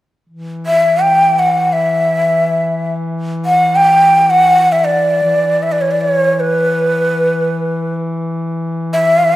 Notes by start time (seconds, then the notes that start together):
0.30 E3
0.66 E5
1.02 G5
1.39 F#5
1.73 E5
3.46 F#5
3.76 G5
4.30 F#5
4.72 E5
4.85 D5
5.23 E3
5.63 E5
5.72 D5
5.81 C#5
5.91 D5
6.01 D5
6.13 C#5
6.40 B4
8.93 E5